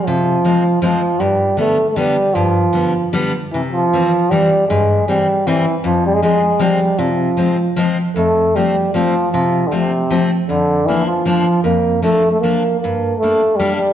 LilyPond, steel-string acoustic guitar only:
\new Staff \with { instrumentName = "Steel-string acoustic guitar" } { \clef bass \time 3/4 \key f \minor \tempo 4 = 155 c4 <f aes c'>8 r8 <f aes c'>8 r8 | g,4 <d g b>8 r8 <d g b>8 r8 | g,4 <d g b>8 r8 <d g b>8 r8 | c4 <e g c'>8 r8 <e g c'>8 r8 |
g,4 <e g c'>8 r8 <e g c'>8 r8 | f,4 <f aes c'>8 r8 <f aes c'>8 r8 | c4 <f aes c'>8 r8 <f aes c'>8 r8 | \key f \major f,4 <f a c'>8 r8 <f a c'>8 r8 |
c4 <f a c'>8 r8 <f a c'>8 r8 | f,4 <f bes d'>8 r8 <f bes d'>8 r8 | f,4 <f bes d'>8 r8 <f bes d'>8 r8 | g,4 <g bes d'>8 r8 <g bes d'>8 r8 | }